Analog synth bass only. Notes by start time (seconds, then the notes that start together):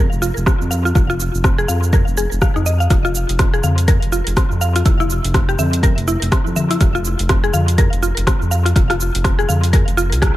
0.12 F1
0.37 F1
0.61 F2
0.95 F1
1.34 F1
1.69 F2
2.08 F1
2.32 F1
2.56 F2
2.90 F1
3.29 F1
3.64 F2
4.02 F1
4.27 F1
4.51 F2
4.86 F1
5.24 F1
5.58 F2
5.97 F1
6.22 F1
6.46 F2
6.81 F1
7.20 F1
7.54 F2
7.93 F1
8.17 F1
8.42 F2
8.76 F1
9.15 F1
9.49 F2
9.88 F1
10.12 C2